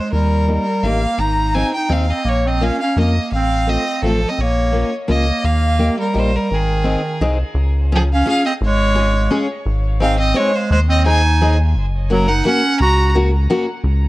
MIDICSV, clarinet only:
0, 0, Header, 1, 2, 480
1, 0, Start_track
1, 0, Key_signature, -4, "major"
1, 0, Tempo, 354191
1, 167, Time_signature, 3, 2, 24, 8
1, 10245, Key_signature, -5, "major"
1, 10246, Tempo, 348432
1, 19233, End_track
2, 0, Start_track
2, 0, Title_t, "Clarinet"
2, 0, Program_c, 0, 71
2, 0, Note_on_c, 0, 56, 60
2, 166, Note_off_c, 0, 56, 0
2, 187, Note_on_c, 0, 55, 73
2, 1177, Note_on_c, 0, 58, 66
2, 1197, Note_off_c, 0, 55, 0
2, 1638, Note_on_c, 0, 63, 79
2, 1659, Note_off_c, 0, 58, 0
2, 2116, Note_off_c, 0, 63, 0
2, 2116, Note_on_c, 0, 63, 70
2, 2341, Note_off_c, 0, 63, 0
2, 2398, Note_on_c, 0, 63, 73
2, 2574, Note_on_c, 0, 60, 61
2, 2594, Note_off_c, 0, 63, 0
2, 2825, Note_off_c, 0, 60, 0
2, 2825, Note_on_c, 0, 60, 63
2, 3040, Note_on_c, 0, 58, 71
2, 3061, Note_off_c, 0, 60, 0
2, 3340, Note_on_c, 0, 60, 63
2, 3360, Note_off_c, 0, 58, 0
2, 3575, Note_on_c, 0, 61, 69
2, 3596, Note_off_c, 0, 60, 0
2, 3791, Note_off_c, 0, 61, 0
2, 3833, Note_on_c, 0, 61, 67
2, 4026, Note_off_c, 0, 61, 0
2, 4078, Note_on_c, 0, 58, 51
2, 4493, Note_off_c, 0, 58, 0
2, 4534, Note_on_c, 0, 60, 73
2, 5023, Note_off_c, 0, 60, 0
2, 5023, Note_on_c, 0, 60, 63
2, 5479, Note_off_c, 0, 60, 0
2, 5523, Note_on_c, 0, 53, 60
2, 5846, Note_on_c, 0, 60, 53
2, 5866, Note_off_c, 0, 53, 0
2, 5987, Note_on_c, 0, 58, 69
2, 6008, Note_off_c, 0, 60, 0
2, 6680, Note_off_c, 0, 58, 0
2, 6935, Note_on_c, 0, 58, 62
2, 7406, Note_off_c, 0, 58, 0
2, 7406, Note_on_c, 0, 58, 74
2, 8096, Note_off_c, 0, 58, 0
2, 8105, Note_on_c, 0, 55, 64
2, 8336, Note_off_c, 0, 55, 0
2, 8336, Note_on_c, 0, 55, 58
2, 8586, Note_off_c, 0, 55, 0
2, 8586, Note_on_c, 0, 55, 63
2, 8822, Note_on_c, 0, 51, 73
2, 8842, Note_off_c, 0, 55, 0
2, 9773, Note_off_c, 0, 51, 0
2, 10786, Note_on_c, 0, 53, 74
2, 10882, Note_off_c, 0, 53, 0
2, 11048, Note_on_c, 0, 61, 83
2, 11235, Note_off_c, 0, 61, 0
2, 11279, Note_on_c, 0, 61, 66
2, 11470, Note_off_c, 0, 61, 0
2, 11482, Note_on_c, 0, 60, 72
2, 11583, Note_off_c, 0, 60, 0
2, 11735, Note_on_c, 0, 56, 76
2, 12855, Note_off_c, 0, 56, 0
2, 13647, Note_on_c, 0, 60, 82
2, 13851, Note_off_c, 0, 60, 0
2, 13867, Note_on_c, 0, 60, 67
2, 14141, Note_on_c, 0, 56, 64
2, 14161, Note_off_c, 0, 60, 0
2, 14358, Note_off_c, 0, 56, 0
2, 14358, Note_on_c, 0, 56, 61
2, 14581, Note_off_c, 0, 56, 0
2, 14592, Note_on_c, 0, 56, 85
2, 14694, Note_off_c, 0, 56, 0
2, 14813, Note_on_c, 0, 60, 76
2, 15032, Note_off_c, 0, 60, 0
2, 15066, Note_on_c, 0, 63, 78
2, 15727, Note_off_c, 0, 63, 0
2, 16522, Note_on_c, 0, 54, 67
2, 16754, Note_on_c, 0, 63, 70
2, 16774, Note_off_c, 0, 54, 0
2, 16983, Note_off_c, 0, 63, 0
2, 17013, Note_on_c, 0, 61, 70
2, 17439, Note_off_c, 0, 61, 0
2, 17495, Note_on_c, 0, 66, 95
2, 17919, Note_off_c, 0, 66, 0
2, 19233, End_track
0, 0, End_of_file